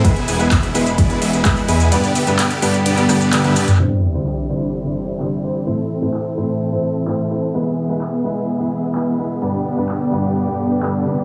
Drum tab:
RD |x---x---x---x---|x---x---x---x---|----------------|----------------|
HH |xxoxxxoxxxoxxxox|xxoxxxoxxxoxxxox|--xxx--xx-------|x-x-xxx-xxxxxxxx|
SH |xxxxxxxxxxxxxxxx|xxxxxxxxxxxxxxxx|--xxxxxxxxxxxxxx|x-x---x-x-xxx-xx|
CP |----x-------x---|----x----x--x---|----x-------x---|----x-------x---|
SD |----------------|----------r--r--|----------------|----------------|
T1 |----------------|------------oo--|----------------|----------------|
T2 |----------------|---------------o|----------------|----------------|
BD |o---o---o---o---|----------------|----------------|----------------|

RD |----------------|----------------|
HH |xxxxxxxxxxxxxxxx|xxxxxxxxxxxxxxxx|
SH |xxxxxxxxxxxxxxxx|xxxxxxxxxxxxxxxx|
CP |----x-------x---|----x-------x---|
SD |----------------|----------------|
T1 |----------------|----------------|
T2 |----------------|----------------|
BD |----------------|----------------|